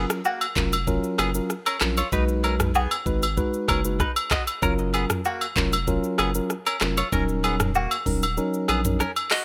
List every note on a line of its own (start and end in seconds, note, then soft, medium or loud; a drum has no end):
0.00 0.20 F#3 medium
0.00 0.20 C#4 medium
0.00 0.20 F4 medium
0.00 0.20 A#4 loud
0.10 cross-stick loud
0.10 shaker loud
0.25 0.46 A#3 medium
0.25 0.45 F#4 medium
0.25 low woodblock medium
0.25 shaker medium
0.41 high agogo medium
0.41 shaker medium
0.56 1.00 F1 loud
0.56 0.74 F#3 medium
0.56 0.74 C#4 medium
0.56 0.75 F4 medium
0.56 0.75 A#4 medium
0.56 kick loud
0.56 clap medium
0.56 shaker medium
0.72 high agogo medium
0.72 shaker medium
0.87 1.31 F#3 medium
0.87 1.31 C#4 medium
0.87 1.31 F4 medium
0.87 1.31 A#4 loud
0.87 kick medium
0.87 shaker medium
1.04 shaker medium
1.18 1.40 F#1 medium
1.18 1.30 B3 medium
1.18 1.29 G#4 medium
1.18 cross-stick medium
1.18 high agogo medium
1.18 shaker medium
1.34 1.52 F#3 medium
1.34 1.52 C#4 medium
1.34 1.52 F4 medium
1.34 1.52 A#4 medium
1.34 shaker loud
1.50 cross-stick medium
1.50 shaker medium
1.66 1.77 C#4 medium
1.66 1.76 A#4 medium
1.66 high agogo medium
1.66 shaker medium
1.81 2.03 A#1 medium
1.81 1.99 F#3 medium
1.81 1.99 C#4 medium
1.81 2.00 F4 medium
1.81 2.00 A#4 medium
1.81 cross-stick loud
1.81 clap loud
1.81 shaker medium
1.97 2.08 F4 medium
1.97 2.07 C#5 medium
1.97 high agogo medium
1.97 shaker medium
2.12 2.87 B1 loud
2.12 2.70 G#3 medium
2.12 2.70 D#4 medium
2.12 2.24 D#4 medium
2.12 2.70 F#4 medium
2.12 2.70 B4 loud
2.12 2.23 B4 loud
2.12 kick loud
2.12 shaker medium
2.28 shaker medium
2.44 2.55 C#4 medium
2.44 2.54 A#4 medium
2.44 high agogo medium
2.44 shaker medium
2.60 cross-stick loud
2.60 mid tom loud
2.60 shaker medium
2.75 2.96 B3 medium
2.75 2.95 G#4 medium
2.75 low woodblock medium
2.75 shaker medium
2.91 high agogo medium
2.91 shaker medium
3.06 3.39 G#1 medium
3.06 3.24 G#3 medium
3.06 3.24 D#4 medium
3.06 3.25 F#4 medium
3.06 3.25 B4 medium
3.06 kick medium
3.06 shaker medium
3.22 high agogo medium
3.22 shaker medium
3.37 3.81 G#3 medium
3.37 3.81 D#4 medium
3.37 3.81 F#4 medium
3.37 3.81 B4 loud
3.37 kick medium
3.37 shaker medium
3.54 shaker medium
3.68 4.02 F#1 loud
3.68 3.80 C#4 medium
3.68 3.79 A#4 medium
3.68 kick loud
3.68 cross-stick medium
3.68 high agogo medium
3.68 shaker medium
3.84 4.02 G#3 medium
3.84 4.02 D#4 medium
3.84 4.02 F#4 medium
3.84 4.02 B4 medium
3.84 shaker loud
4.00 4.11 D#4 medium
4.00 4.11 B4 medium
4.00 kick loud
4.00 cross-stick medium
4.00 shaker medium
4.16 high agogo medium
4.16 shaker medium
4.31 4.42 F#4 medium
4.31 4.42 D#5 medium
4.31 kick loud
4.31 cross-stick loud
4.31 clap loud
4.31 shaker medium
4.47 high agogo medium
4.47 shaker medium
4.62 5.06 F#1 loud
4.62 5.20 F#3 medium
4.62 5.20 C#4 medium
4.62 4.74 C#4 medium
4.62 5.20 F4 medium
4.62 5.20 A#4 loud
4.62 4.73 A#4 loud
4.62 kick loud
4.62 shaker medium
4.79 shaker medium
4.94 5.05 B3 medium
4.94 5.04 G#4 medium
4.94 high agogo medium
4.94 shaker medium
5.10 cross-stick loud
5.10 mid tom medium
5.10 shaker loud
5.25 5.46 A#3 medium
5.25 5.45 F#4 medium
5.25 low woodblock medium
5.25 shaker medium
5.41 high agogo medium
5.41 shaker medium
5.56 6.00 F1 medium
5.56 5.74 F#3 medium
5.56 5.75 C#4 medium
5.56 5.75 F4 medium
5.56 5.75 A#4 medium
5.56 kick loud
5.56 clap medium
5.56 shaker medium
5.73 high agogo medium
5.73 shaker medium
5.87 6.31 F#3 medium
5.87 6.31 C#4 medium
5.87 6.31 F4 medium
5.87 6.31 A#4 loud
5.87 kick medium
5.87 shaker medium
6.04 shaker medium
6.18 6.41 F#1 medium
6.18 6.30 B3 medium
6.18 6.29 G#4 medium
6.18 cross-stick loud
6.18 high agogo medium
6.18 shaker medium
6.34 6.52 F#3 medium
6.34 6.52 C#4 medium
6.34 6.52 F4 medium
6.34 6.52 A#4 medium
6.34 shaker loud
6.50 cross-stick medium
6.50 shaker medium
6.66 6.77 C#4 medium
6.66 6.76 A#4 medium
6.66 high agogo medium
6.66 shaker medium
6.81 7.03 F1 medium
6.81 7.00 F#3 medium
6.81 7.00 C#4 medium
6.81 7.00 F4 medium
6.81 7.00 A#4 medium
6.81 cross-stick loud
6.81 clap loud
6.81 shaker medium
6.97 7.08 F4 medium
6.97 7.07 C#5 medium
6.97 high agogo medium
6.97 shaker medium
7.12 7.87 D#1 loud
7.12 7.70 F#3 medium
7.12 7.70 C#4 medium
7.12 7.24 C#4 medium
7.12 7.70 D#4 medium
7.12 7.70 A#4 loud
7.12 7.23 A#4 loud
7.12 kick loud
7.12 shaker medium
7.29 shaker medium
7.44 7.55 B3 medium
7.44 7.54 G#4 medium
7.44 high agogo medium
7.44 shaker medium
7.60 cross-stick loud
7.60 mid tom loud
7.60 shaker medium
7.75 7.96 A#3 medium
7.75 7.95 F#4 medium
7.75 low woodblock medium
7.75 shaker medium
7.91 high agogo medium
7.91 shaker medium
8.06 8.39 D#1 medium
8.06 8.24 F#3 medium
8.06 8.24 C#4 medium
8.06 8.25 D#4 medium
8.06 8.25 A#4 medium
8.06 kick loud
8.06 open hi-hat medium
8.06 shaker medium
8.22 high agogo medium
8.22 shaker medium
8.37 8.81 F#3 loud
8.37 8.81 C#4 medium
8.37 8.81 D#4 medium
8.37 8.81 A#4 loud
8.37 shaker medium
8.54 shaker medium
8.68 9.02 A#1 medium
8.68 8.80 B3 medium
8.68 8.79 G#4 medium
8.68 cross-stick medium
8.68 high agogo medium
8.68 shaker medium
8.85 9.02 F#3 medium
8.85 9.02 C#4 medium
8.85 9.02 D#4 medium
8.85 9.03 A#4 medium
8.85 mid tom loud
8.85 shaker loud
9.00 9.11 C#4 medium
9.00 9.11 A#4 medium
9.00 cross-stick medium
9.00 shaker medium
9.16 high agogo medium
9.16 shaker medium
9.31 9.42 F#4 medium
9.31 9.42 D#5 medium
9.31 cross-stick loud
9.31 clap loud
9.31 open hi-hat medium
9.31 shaker medium